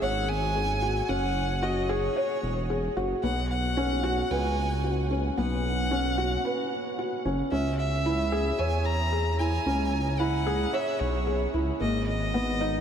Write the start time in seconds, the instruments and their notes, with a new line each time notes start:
Already playing: felt piano F#4 G#4
0.02 detuned saw bass G#1, felt piano C#5, violin F#5
0.29 violin G#5
0.55 felt piano G#4
0.82 felt piano F#4
1.09 detuned saw bass F#1, felt piano C#4, violin F#5
1.62 felt piano F#4, violin D#5
1.89 felt piano G#4, violin C#5
2.16 felt piano C#5
2.43 detuned saw bass E1
2.70 felt piano G#4
2.96 detuned saw bass F#1, felt piano F#4
3.23 detuned saw bass B1, felt piano B3, violin F#5
3.50 violin F#5
3.77 felt piano C#4
4.03 felt piano F#4
4.30 detuned saw bass C#2, felt piano B4, violin G#5
4.84 felt piano F#4
5.11 felt piano C#4
5.37 detuned saw bass B1, felt piano B3, violin F#5
5.91 felt piano C#4
6.18 felt piano F#4
6.45 felt piano B4
6.98 felt piano F#4
7.25 detuned saw bass F#1, felt piano C#4
7.51 detuned saw bass C#2, felt piano C#4, violin E5
7.79 violin E5
8.06 felt piano E4
8.32 felt piano G#4
8.58 detuned saw bass E2, felt piano C#5, violin G#5
8.85 violin A#5
9.12 felt piano G#4
9.39 felt piano E4, violin G#5
9.66 detuned saw bass C#2, felt piano C#4
10.19 felt piano E4, violin F#5
10.46 felt piano G#4
10.73 felt piano C#5, violin E5
11.00 detuned saw bass B1, violin C#5
11.27 felt piano G#4
11.54 detuned saw bass C#2, felt piano E4
11.80 detuned saw bass G#1, felt piano A#3, violin D#5
12.08 violin D#5
12.34 felt piano B3
12.61 felt piano D#4